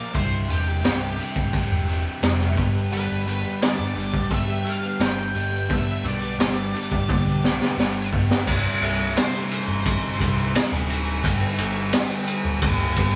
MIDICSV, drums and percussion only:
0, 0, Header, 1, 2, 480
1, 0, Start_track
1, 0, Key_signature, 0, "major"
1, 0, Tempo, 692841
1, 105, Time_signature, 4, 2, 24, 8
1, 9114, End_track
2, 0, Start_track
2, 0, Title_t, "Drums"
2, 102, Note_on_c, 9, 36, 96
2, 102, Note_on_c, 9, 46, 69
2, 171, Note_off_c, 9, 36, 0
2, 171, Note_off_c, 9, 46, 0
2, 345, Note_on_c, 9, 46, 52
2, 415, Note_off_c, 9, 46, 0
2, 584, Note_on_c, 9, 46, 68
2, 587, Note_on_c, 9, 38, 105
2, 653, Note_off_c, 9, 46, 0
2, 656, Note_off_c, 9, 38, 0
2, 823, Note_on_c, 9, 46, 48
2, 892, Note_off_c, 9, 46, 0
2, 942, Note_on_c, 9, 36, 87
2, 1011, Note_off_c, 9, 36, 0
2, 1062, Note_on_c, 9, 36, 96
2, 1062, Note_on_c, 9, 46, 70
2, 1131, Note_off_c, 9, 46, 0
2, 1132, Note_off_c, 9, 36, 0
2, 1308, Note_on_c, 9, 46, 48
2, 1378, Note_off_c, 9, 46, 0
2, 1542, Note_on_c, 9, 46, 66
2, 1545, Note_on_c, 9, 38, 109
2, 1612, Note_off_c, 9, 46, 0
2, 1615, Note_off_c, 9, 38, 0
2, 1667, Note_on_c, 9, 38, 27
2, 1736, Note_off_c, 9, 38, 0
2, 1783, Note_on_c, 9, 36, 96
2, 1787, Note_on_c, 9, 46, 48
2, 1853, Note_off_c, 9, 36, 0
2, 1856, Note_off_c, 9, 46, 0
2, 2027, Note_on_c, 9, 46, 64
2, 2096, Note_off_c, 9, 46, 0
2, 2266, Note_on_c, 9, 46, 51
2, 2335, Note_off_c, 9, 46, 0
2, 2508, Note_on_c, 9, 46, 68
2, 2511, Note_on_c, 9, 38, 118
2, 2577, Note_off_c, 9, 46, 0
2, 2580, Note_off_c, 9, 38, 0
2, 2748, Note_on_c, 9, 46, 46
2, 2817, Note_off_c, 9, 46, 0
2, 2865, Note_on_c, 9, 36, 89
2, 2935, Note_off_c, 9, 36, 0
2, 2983, Note_on_c, 9, 46, 73
2, 2984, Note_on_c, 9, 36, 102
2, 3052, Note_off_c, 9, 46, 0
2, 3054, Note_off_c, 9, 36, 0
2, 3227, Note_on_c, 9, 46, 54
2, 3297, Note_off_c, 9, 46, 0
2, 3465, Note_on_c, 9, 46, 76
2, 3468, Note_on_c, 9, 38, 107
2, 3535, Note_off_c, 9, 46, 0
2, 3537, Note_off_c, 9, 38, 0
2, 3705, Note_on_c, 9, 46, 54
2, 3775, Note_off_c, 9, 46, 0
2, 3949, Note_on_c, 9, 36, 103
2, 3949, Note_on_c, 9, 46, 71
2, 4018, Note_off_c, 9, 36, 0
2, 4018, Note_off_c, 9, 46, 0
2, 4192, Note_on_c, 9, 46, 54
2, 4261, Note_off_c, 9, 46, 0
2, 4433, Note_on_c, 9, 46, 79
2, 4436, Note_on_c, 9, 38, 112
2, 4502, Note_off_c, 9, 46, 0
2, 4505, Note_off_c, 9, 38, 0
2, 4672, Note_on_c, 9, 46, 51
2, 4741, Note_off_c, 9, 46, 0
2, 4791, Note_on_c, 9, 36, 84
2, 4861, Note_off_c, 9, 36, 0
2, 4912, Note_on_c, 9, 36, 104
2, 4912, Note_on_c, 9, 48, 62
2, 4981, Note_off_c, 9, 36, 0
2, 4981, Note_off_c, 9, 48, 0
2, 5156, Note_on_c, 9, 38, 70
2, 5225, Note_off_c, 9, 38, 0
2, 5275, Note_on_c, 9, 38, 59
2, 5344, Note_off_c, 9, 38, 0
2, 5397, Note_on_c, 9, 38, 76
2, 5466, Note_off_c, 9, 38, 0
2, 5630, Note_on_c, 9, 36, 91
2, 5699, Note_off_c, 9, 36, 0
2, 5754, Note_on_c, 9, 38, 80
2, 5823, Note_off_c, 9, 38, 0
2, 5869, Note_on_c, 9, 49, 100
2, 5870, Note_on_c, 9, 36, 100
2, 5939, Note_off_c, 9, 49, 0
2, 5940, Note_off_c, 9, 36, 0
2, 6109, Note_on_c, 9, 51, 58
2, 6178, Note_off_c, 9, 51, 0
2, 6351, Note_on_c, 9, 51, 89
2, 6353, Note_on_c, 9, 38, 112
2, 6420, Note_off_c, 9, 51, 0
2, 6423, Note_off_c, 9, 38, 0
2, 6591, Note_on_c, 9, 51, 60
2, 6660, Note_off_c, 9, 51, 0
2, 6829, Note_on_c, 9, 36, 105
2, 6831, Note_on_c, 9, 51, 93
2, 6899, Note_off_c, 9, 36, 0
2, 6901, Note_off_c, 9, 51, 0
2, 7070, Note_on_c, 9, 36, 71
2, 7072, Note_on_c, 9, 51, 69
2, 7139, Note_off_c, 9, 36, 0
2, 7142, Note_off_c, 9, 51, 0
2, 7311, Note_on_c, 9, 51, 98
2, 7313, Note_on_c, 9, 38, 111
2, 7380, Note_off_c, 9, 51, 0
2, 7383, Note_off_c, 9, 38, 0
2, 7551, Note_on_c, 9, 51, 68
2, 7621, Note_off_c, 9, 51, 0
2, 7788, Note_on_c, 9, 36, 100
2, 7790, Note_on_c, 9, 51, 93
2, 7857, Note_off_c, 9, 36, 0
2, 7860, Note_off_c, 9, 51, 0
2, 8025, Note_on_c, 9, 51, 69
2, 8094, Note_off_c, 9, 51, 0
2, 8263, Note_on_c, 9, 51, 104
2, 8266, Note_on_c, 9, 38, 110
2, 8332, Note_off_c, 9, 51, 0
2, 8335, Note_off_c, 9, 38, 0
2, 8505, Note_on_c, 9, 51, 58
2, 8574, Note_off_c, 9, 51, 0
2, 8741, Note_on_c, 9, 51, 97
2, 8743, Note_on_c, 9, 36, 101
2, 8810, Note_off_c, 9, 51, 0
2, 8813, Note_off_c, 9, 36, 0
2, 8981, Note_on_c, 9, 51, 63
2, 8984, Note_on_c, 9, 36, 80
2, 9050, Note_off_c, 9, 51, 0
2, 9053, Note_off_c, 9, 36, 0
2, 9114, End_track
0, 0, End_of_file